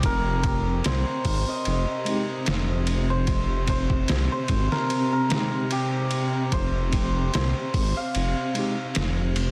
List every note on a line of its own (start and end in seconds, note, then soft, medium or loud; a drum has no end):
0.00 0.81 F1 loud
0.00 2.38 G4 medium
0.00 0.85 C5 medium
0.00 kick loud
0.00 ride medium
0.04 9.51 C3 medium
0.04 2.88 A#4 loud
0.43 kick medium
0.43 ride medium
0.84 1.05 C2 loud
0.84 3.10 C5 medium
0.84 snare loud
0.84 ride medium
1.25 1.45 G#1 loud
1.25 kick medium
1.25 open hi-hat medium
1.49 3.86 D#5 medium
1.65 1.86 F1 medium
1.65 ride medium
2.05 2.27 G#3 medium
2.05 2.28 C4 medium
2.05 2.29 D#4 medium
2.05 ride medium
2.09 2.29 G4 medium
2.46 4.06 F1 loud
2.46 snare loud
2.46 ride medium
2.87 ride medium
3.10 3.69 C5 medium
3.27 kick loud
3.27 ride medium
3.67 4.32 C5 medium
3.67 kick medium
3.67 ride medium
3.90 kick medium
4.08 4.29 C2 medium
4.08 snare loud
4.08 ride medium
4.32 6.53 C5 medium
4.48 4.69 G#1 loud
4.48 kick medium
4.48 ride medium
4.72 5.12 A#4 medium
4.72 snare soft
4.90 ride medium
5.13 7.95 A#4 medium
5.29 5.62 G#3 medium
5.29 5.63 C4 medium
5.29 5.64 D#4 medium
5.29 snare loud
5.29 ride medium
5.34 5.65 G4 loud
5.71 8.86 G4 medium
5.71 ride medium
6.11 ride medium
6.52 7.30 F1 loud
6.52 7.34 C5 loud
6.52 kick loud
6.52 ride medium
6.92 kick medium
6.92 ride medium
7.34 7.54 C2 loud
7.34 9.51 C5 medium
7.34 snare loud
7.34 ride medium
7.74 7.94 G#1 medium
7.74 kick medium
7.74 open hi-hat medium
7.97 9.51 F5 medium
8.15 8.34 F1 medium
8.15 ride medium
8.54 8.76 G#3 medium
8.54 8.77 C4 medium
8.54 8.78 D#4 medium
8.54 ride medium
8.59 8.78 G4 medium
8.95 9.51 F1 loud
8.95 snare loud
8.95 ride medium
9.36 ride medium